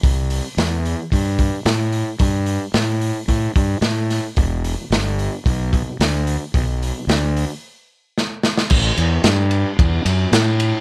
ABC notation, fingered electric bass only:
X:1
M:4/4
L:1/8
Q:1/4=111
K:Em
V:1 name="Fingered electric bass" clef=bass
C,,2 E,,2 G,,2 A,,2 | G,,2 A,,2 A,, G,, A,,2 | E,,,2 G,,,2 B,,,2 D,,2 | B,,,2 D,,2 z4 |
A,,, E,, G,,2 E,, F,, A,,2 |]